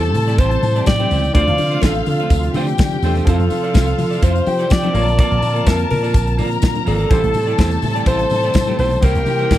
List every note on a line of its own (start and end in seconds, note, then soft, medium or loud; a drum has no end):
0.00 0.15 E2 loud
0.00 4.91 C3 medium
0.00 1.33 E3 medium
0.00 1.33 G3 medium
0.00 1.30 A3 medium
0.00 1.31 C4 medium
0.00 1.30 E4 medium
0.00 1.33 E4 medium
0.00 1.31 G4 medium
0.00 0.41 A4 loud
0.00 0.84 A4 medium
0.00 1.31 C5 medium
0.00 0.84 A5 loud
0.00 muted clean electric guitar stroke medium
0.00 closed hi-hat soft
0.14 0.40 A2 loud
0.14 muted clean electric guitar stroke soft
0.14 open hi-hat medium
0.14 tambourine medium
0.14 low conga medium
0.27 0.38 C4 medium
0.27 0.39 E4 medium
0.27 0.39 G4 medium
0.27 0.41 D5 medium
0.27 closed hi-hat soft
0.27 tambourine soft
0.38 0.56 A1 loud
0.38 0.57 C4 medium
0.38 0.52 E4 loud
0.38 0.51 G4 medium
0.38 0.87 C5 loud
0.38 0.51 C5 loud
0.38 kick loud
0.38 closed hi-hat medium
0.38 tambourine medium
0.51 muted clean electric guitar stroke soft
0.51 closed hi-hat medium
0.63 0.80 A2 loud
0.63 muted clean electric guitar stroke medium
0.63 open hi-hat medium
0.63 tambourine medium
0.63 muted conga medium
0.76 0.86 C4 soft
0.76 0.87 E4 medium
0.76 0.87 G4 medium
0.76 0.88 D5 medium
0.76 closed hi-hat soft
0.76 tambourine soft
0.86 1.04 A2 loud
0.86 1.34 G4 medium
0.86 1.32 D5 loud
0.86 1.34 G5 medium
0.86 kick loud
0.86 snare loud
0.86 tambourine loud
0.86 high conga loud
0.99 1.10 C4 medium
0.99 1.11 E4 medium
0.99 1.11 G4 medium
0.99 1.12 C5 medium
0.99 closed hi-hat soft
0.99 tambourine soft
0.99 high conga medium
1.11 1.28 C#2 medium
1.11 1.25 C4 medium
1.11 1.24 E4 medium
1.11 1.23 G4 medium
1.11 1.23 C5 medium
1.11 open hi-hat medium
1.11 tambourine medium
1.24 muted clean electric guitar stroke soft
1.24 closed hi-hat medium
1.24 tambourine soft
1.33 1.44 D2 loud
1.33 3.22 D3 medium
1.33 3.25 F3 medium
1.33 1.53 A3 medium
1.33 8.99 C4 medium
1.33 3.22 D4 medium
1.33 1.49 D4 medium
1.33 3.25 D4 medium
1.33 2.52 F4 medium
1.33 3.23 F4 medium
1.33 7.07 F4 medium
1.33 1.48 F4 loud
1.33 3.23 C5 medium
1.33 1.47 C5 loud
1.33 1.84 D5 loud
1.33 2.52 F5 loud
1.33 kick loud
1.33 closed hi-hat medium
1.33 tambourine medium
1.47 1.56 D2 medium
1.47 muted clean electric guitar stroke soft
1.47 closed hi-hat medium
1.58 1.76 D3 medium
1.58 muted clean electric guitar stroke soft
1.58 open hi-hat medium
1.58 tambourine medium
1.58 muted conga medium
1.71 1.81 A3 medium
1.71 1.82 D4 medium
1.71 1.83 F4 medium
1.71 1.84 C5 medium
1.71 closed hi-hat soft
1.82 2.00 A1 medium
1.82 2.01 A3 medium
1.82 1.96 D4 medium
1.82 1.95 F4 medium
1.82 2.07 A4 loud
1.82 1.95 D5 medium
1.82 kick loud
1.82 snare loud
1.82 tambourine loud
1.82 high conga medium
1.95 muted clean electric guitar stroke medium
1.95 closed hi-hat soft
2.06 2.24 D3 loud
2.06 2.52 A4 medium
2.06 muted clean electric guitar stroke soft
2.06 open hi-hat medium
2.06 tambourine medium
2.06 low conga medium
2.20 2.34 A3 medium
2.20 2.33 D4 medium
2.20 2.33 F4 medium
2.20 2.33 C5 medium
2.20 closed hi-hat soft
2.30 2.47 D2 loud
2.30 kick loud
2.30 closed hi-hat medium
2.30 tambourine medium
2.43 muted clean electric guitar stroke soft
2.43 closed hi-hat medium
2.54 2.72 D3 loud
2.54 2.73 A3 medium
2.54 2.68 D4 loud
2.54 2.68 F4 loud
2.54 3.25 G4 medium
2.54 2.67 C5 loud
2.54 3.25 G5 medium
2.54 open hi-hat medium
2.54 tambourine medium
2.54 muted conga medium
2.54 low conga medium
2.67 muted clean electric guitar stroke soft
2.67 closed hi-hat soft
2.67 tambourine soft
2.78 2.96 D3 loud
2.78 muted clean electric guitar stroke soft
2.78 kick loud
2.78 snare loud
2.78 tambourine loud
2.78 high conga medium
2.91 muted clean electric guitar stroke soft
2.91 closed hi-hat soft
2.91 tambourine soft
2.91 high conga medium
3.02 3.19 E2 medium
3.02 3.17 A3 medium
3.02 3.16 D4 medium
3.02 3.16 F4 medium
3.02 4.25 A4 medium
3.02 3.15 C5 medium
3.02 open hi-hat medium
3.02 tambourine medium
3.15 3.27 A3 soft
3.15 3.27 D4 medium
3.15 3.28 F4 medium
3.15 3.28 C5 medium
3.15 closed hi-hat soft
3.15 tambourine soft
3.25 3.36 F2 loud
3.25 4.90 F3 medium
3.25 7.07 F3 medium
3.25 4.91 C4 medium
3.25 3.45 C4 medium
3.25 3.40 E4 medium
3.25 4.44 F4 medium
3.25 4.91 F4 medium
3.25 4.92 A4 medium
3.25 3.40 A4 medium
3.25 4.44 F5 loud
3.25 kick loud
3.25 closed hi-hat medium
3.25 tambourine medium
3.25 muted conga soft
3.29 3.39 C5 loud
3.39 3.47 F2 loud
3.39 muted clean electric guitar stroke medium
3.39 closed hi-hat soft
3.50 3.77 F3 loud
3.50 muted clean electric guitar stroke soft
3.50 open hi-hat medium
3.50 tambourine medium
3.50 muted conga medium
3.63 3.73 C4 medium
3.63 3.74 E4 medium
3.63 3.74 A4 medium
3.63 3.76 D5 medium
3.63 closed hi-hat soft
3.74 3.92 C2 loud
3.74 3.92 C4 loud
3.74 3.87 E4 medium
3.74 3.87 A4 loud
3.74 3.86 C5 loud
3.74 kick loud
3.74 snare loud
3.74 tambourine loud
3.74 high conga medium
3.87 muted clean electric guitar stroke medium
3.87 closed hi-hat medium
3.98 4.15 F3 loud
3.98 muted clean electric guitar stroke soft
3.98 open hi-hat medium
3.98 tambourine medium
3.98 low conga medium
4.11 4.21 C4 medium
4.11 4.22 E4 medium
4.11 4.22 A4 medium
4.11 4.23 D5 medium
4.11 closed hi-hat soft
4.11 tambourine soft
4.22 4.40 F2 loud
4.22 4.40 C4 medium
4.22 4.35 E4 medium
4.22 4.34 A4 medium
4.22 4.74 C5 loud
4.22 4.34 C5 loud
4.22 kick loud
4.22 closed hi-hat medium
4.22 tambourine medium
4.35 muted clean electric guitar stroke soft
4.35 closed hi-hat soft
4.46 4.64 F3 loud
4.46 4.94 G4 medium
4.46 4.94 G5 medium
4.46 muted clean electric guitar stroke soft
4.46 open hi-hat medium
4.46 tambourine medium
4.46 muted conga medium
4.59 4.69 C4 soft
4.59 4.70 E4 medium
4.59 4.70 A4 medium
4.59 4.71 D5 medium
4.59 closed hi-hat medium
4.59 tambourine soft
4.70 4.96 F3 loud
4.70 5.19 D5 loud
4.70 muted clean electric guitar stroke soft
4.70 kick loud
4.70 snare loud
4.70 tambourine loud
4.70 high conga loud
4.83 4.94 C4 medium
4.83 4.94 E4 medium
4.83 4.94 A4 medium
4.83 4.95 C5 medium
4.83 closed hi-hat soft
4.83 tambourine soft
4.83 high conga medium
4.93 5.20 A#1 loud
4.93 7.09 D3 medium
4.93 6.82 A#3 medium
4.93 5.09 A#3 medium
4.93 7.09 A#3 medium
4.93 6.82 F4 medium
4.93 5.07 F4 medium
4.93 5.06 A4 medium
4.93 6.83 A#4 medium
4.93 6.36 A#4 medium
4.93 5.01 C#5 medium
4.93 5.06 D5 medium
4.93 6.36 A5 medium
4.93 open hi-hat medium
4.93 tambourine medium
5.02 6.86 D5 medium
5.07 muted clean electric guitar stroke medium
5.07 closed hi-hat medium
5.07 tambourine soft
5.18 5.36 A#3 medium
5.18 5.31 F4 medium
5.18 5.31 A4 medium
5.18 5.69 D5 loud
5.18 5.30 D5 medium
5.18 kick loud
5.18 closed hi-hat medium
5.18 tambourine medium
5.18 muted conga soft
5.31 5.39 A#1 loud
5.31 muted clean electric guitar stroke soft
5.31 closed hi-hat soft
5.42 5.60 A#2 loud
5.42 muted clean electric guitar stroke soft
5.42 open hi-hat medium
5.42 tambourine medium
5.42 muted conga medium
5.54 5.65 A#3 medium
5.54 5.65 F4 medium
5.54 5.66 A4 medium
5.54 5.67 D5 medium
5.54 closed hi-hat soft
5.66 5.84 F2 medium
5.66 5.84 A#3 medium
5.66 5.79 F4 medium
5.66 5.78 A4 medium
5.66 5.90 A#4 medium
5.66 5.78 E5 medium
5.66 kick loud
5.66 snare loud
5.66 tambourine loud
5.66 high conga medium
5.79 muted clean electric guitar stroke medium
5.79 closed hi-hat soft
5.90 6.16 A#2 loud
5.90 6.35 A#4 medium
5.90 muted clean electric guitar stroke soft
5.90 open hi-hat medium
5.90 tambourine medium
5.90 low conga medium
6.03 6.17 A#3 medium
6.03 6.17 F4 medium
6.03 6.16 A4 medium
6.03 6.16 D5 medium
6.03 closed hi-hat soft
6.03 tambourine soft
6.14 6.40 A#1 loud
6.14 kick loud
6.14 closed hi-hat medium
6.14 tambourine medium
6.27 muted clean electric guitar stroke soft
6.27 closed hi-hat soft
6.37 6.56 A#2 loud
6.37 6.56 A#3 medium
6.37 6.50 F4 medium
6.37 6.50 A4 loud
6.37 7.09 A#4 medium
6.37 6.49 D5 medium
6.37 7.09 A#5 loud
6.37 open hi-hat medium
6.37 tambourine medium
6.37 muted conga medium
6.50 muted clean electric guitar stroke soft
6.50 closed hi-hat soft
6.50 tambourine soft
6.62 6.80 A#2 loud
6.62 muted clean electric guitar stroke soft
6.62 kick loud
6.62 snare loud
6.62 tambourine loud
6.62 high conga medium
6.75 muted clean electric guitar stroke medium
6.75 closed hi-hat soft
6.75 tambourine soft
6.75 high conga medium
6.86 7.04 G#1 loud
6.86 6.99 A#3 medium
6.86 6.99 F4 medium
6.86 6.98 A4 medium
6.86 7.79 A4 loud
6.86 6.98 D5 medium
6.86 open hi-hat medium
6.86 tambourine medium
6.99 7.10 A#3 soft
6.99 7.10 F4 medium
6.99 7.11 A4 medium
6.99 7.11 D5 medium
6.99 closed hi-hat medium
7.09 7.20 A1 loud
7.09 9.58 C3 medium
7.09 9.58 E3 medium
7.09 9.58 G3 medium
7.09 8.98 A3 medium
7.09 7.28 A3 medium
7.09 8.99 E4 medium
7.09 7.23 E4 medium
7.09 9.58 E4 medium
7.09 7.22 G4 loud
7.09 8.99 G4 medium
7.09 8.99 A4 loud
7.09 7.21 C5 medium
7.09 9.00 C5 medium
7.09 8.99 A5 loud
7.09 kick loud
7.09 closed hi-hat medium
7.09 tambourine medium
7.09 muted conga soft
7.23 7.32 A1 loud
7.23 muted clean electric guitar stroke soft
7.23 closed hi-hat soft
7.34 7.52 A2 loud
7.34 muted clean electric guitar stroke soft
7.34 open hi-hat medium
7.34 tambourine medium
7.34 muted conga medium
7.47 7.57 A3 soft
7.47 7.58 E4 medium
7.47 7.58 G4 medium
7.47 7.60 D5 medium
7.47 closed hi-hat soft
7.58 7.76 E2 medium
7.58 7.76 A3 loud
7.58 7.72 E4 loud
7.58 7.71 G4 medium
7.58 7.71 C5 loud
7.58 kick loud
7.58 snare loud
7.58 tambourine loud
7.58 high conga medium
7.71 muted clean electric guitar stroke soft
7.71 closed hi-hat medium
7.82 8.00 A2 loud
7.82 muted clean electric guitar stroke soft
7.82 open hi-hat medium
7.82 tambourine medium
7.82 low conga medium
7.95 8.06 A3 medium
7.95 8.06 E4 medium
7.95 8.07 G4 medium
7.95 8.08 D5 medium
7.95 closed hi-hat soft
8.06 8.24 A1 loud
8.06 8.25 A3 medium
8.06 8.20 E4 loud
8.06 8.19 G4 medium
8.06 8.75 C5 loud
8.06 8.18 C5 loud
8.06 kick loud
8.06 closed hi-hat medium
8.06 tambourine medium
8.19 muted clean electric guitar stroke medium
8.19 closed hi-hat medium
8.30 8.48 A2 loud
8.30 muted clean electric guitar stroke soft
8.30 open hi-hat medium
8.30 tambourine medium
8.30 muted conga medium
8.43 8.54 A3 soft
8.43 8.54 E4 medium
8.43 8.54 G4 medium
8.43 8.55 D5 medium
8.43 closed hi-hat medium
8.43 tambourine soft
8.54 8.72 A2 loud
8.54 muted clean electric guitar stroke medium
8.54 kick loud
8.54 snare loud
8.54 tambourine loud
8.54 high conga loud
8.67 8.77 A3 medium
8.67 8.78 E4 medium
8.67 8.79 G4 medium
8.67 8.79 C5 medium
8.67 closed hi-hat soft
8.67 tambourine soft
8.67 high conga medium
8.78 8.96 B1 medium
8.78 8.93 A3 medium
8.78 8.92 E4 medium
8.78 8.91 G4 medium
8.78 9.05 C5 loud
8.78 8.91 C5 medium
8.78 open hi-hat medium
8.78 tambourine medium
8.91 muted clean electric guitar stroke soft
8.91 closed hi-hat soft
8.91 tambourine soft
9.01 9.12 C2 loud
9.01 9.58 C3 medium
9.01 9.58 A#3 medium
9.01 9.21 A#3 loud
9.01 9.58 A#3 medium
9.01 9.16 E4 loud
9.01 9.58 E4 medium
9.01 9.15 G4 medium
9.01 9.58 G4 medium
9.01 9.58 A#4 loud
9.01 9.58 C5 medium
9.01 9.14 C5 loud
9.01 9.58 G5 loud
9.01 kick loud
9.01 closed hi-hat medium
9.01 tambourine medium
9.01 muted conga soft
9.15 9.24 C2 loud
9.15 muted clean electric guitar stroke soft
9.15 closed hi-hat medium
9.26 9.43 C3 loud
9.26 muted clean electric guitar stroke soft
9.26 open hi-hat medium
9.26 tambourine soft
9.26 muted conga soft
9.39 9.50 A#3 medium
9.39 9.50 E4 medium
9.39 9.51 G4 medium
9.39 9.52 C5 medium
9.39 closed hi-hat soft
9.51 9.58 G1 loud
9.51 9.58 A#3 medium
9.51 9.58 E4 medium
9.51 9.58 G4 medium
9.51 9.58 D5 loud
9.51 kick loud
9.51 snare loud
9.51 tambourine loud
9.51 high conga medium